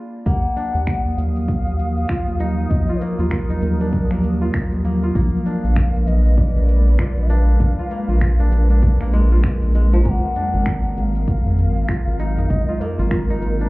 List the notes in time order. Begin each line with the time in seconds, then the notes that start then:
Already playing: A#3 D4 F4
0.26 D#2 F3 F#3 A#3 A#4 F#5 D#6, kick, open hi-hat, cabasa
0.56 D4, cabasa
0.75 D#2, open hi-hat, cabasa
0.87 finger snap, kick, open hi-hat, cabasa
1.06 open hi-hat
1.16 D#2 F5, cabasa
1.36 open hi-hat, cabasa
1.48 kick, open hi-hat, cabasa
1.66 D#2, open hi-hat, cabasa
1.79 cabasa
1.97 cabasa
2.09 F4, finger snap, kick, open hi-hat, cabasa
2.27 D#2, open hi-hat
2.40 D#4, cabasa
2.58 cabasa
2.69 D#2 D#5, kick, open hi-hat, cabasa
2.89 F4
3.00 A#3 A#4, cabasa
3.19 D#2 F4, open hi-hat, cabasa
3.31 F4, finger snap, kick, open hi-hat, cabasa
3.50 D#4, open hi-hat
3.62 D#2, cabasa
3.80 D4, open hi-hat, cabasa
3.92 kick, open hi-hat, cabasa
4.11 D#2 A#3, finger snap, open hi-hat, cabasa
4.24 cabasa
4.41 F4, cabasa
4.54 finger snap, kick, open hi-hat, cabasa
4.72 D#2, open hi-hat
4.85 A#3, cabasa
5.03 F4, cabasa
5.15 A#1 G#3 A#3 B4 F5, kick, open hi-hat, cabasa
5.46 D4, cabasa
5.64 A#1, open hi-hat, cabasa
5.76 finger snap, kick, open hi-hat, cabasa
5.95 open hi-hat
6.07 A#1 D#5, cabasa
6.25 open hi-hat, cabasa
6.37 D5, kick, open hi-hat, cabasa
6.56 A#1, open hi-hat, cabasa
6.68 cabasa
6.87 cabasa
6.99 F4, finger snap, kick, open hi-hat, cabasa
7.17 A#1, open hi-hat
7.30 D4 F5, cabasa
7.48 cabasa
7.60 A#1, kick, open hi-hat, cabasa
7.79 F4
7.91 A#3, cabasa
8.08 A#1 F4, open hi-hat, cabasa
8.21 F4, finger snap, kick, open hi-hat, cabasa
8.40 D4, open hi-hat
8.52 A#1, cabasa
8.70 D4, open hi-hat, cabasa
8.82 kick, open hi-hat, cabasa
9.00 A#1 A#3, finger snap, open hi-hat, cabasa
9.13 G#3, cabasa
9.32 F4, cabasa
9.44 finger snap, kick, open hi-hat, cabasa
9.62 A#1, open hi-hat, cabasa
9.75 G#3, cabasa
9.93 F3, open hi-hat, cabasa
10.04 G#1 F#3 A#3 G#5 A#5, kick, open hi-hat, cabasa
10.10 F#5
10.36 D4, udu, cabasa
10.54 G#1, open hi-hat, cabasa
10.66 finger snap, kick, open hi-hat, cabasa
10.84 open hi-hat
10.97 G#1 F#5, cabasa
11.01 F5
11.15 open hi-hat, cabasa
11.27 kick, open hi-hat, cabasa
11.46 G#1, open hi-hat, udu, cabasa
11.58 cabasa
11.77 cabasa
11.89 F4, finger snap, kick, open hi-hat, cabasa
12.07 G#1, open hi-hat
12.19 D#4, cabasa
12.38 D#4, udu, cabasa
12.49 G#1 D#5, kick, open hi-hat, cabasa
12.68 F4
12.80 A#3 A#4, udu, cabasa
12.99 G#1 F4, open hi-hat, cabasa
13.11 F4, finger snap, kick, open hi-hat, cabasa
13.30 D#4, open hi-hat
13.42 G#1, cabasa
13.60 D4, open hi-hat, cabasa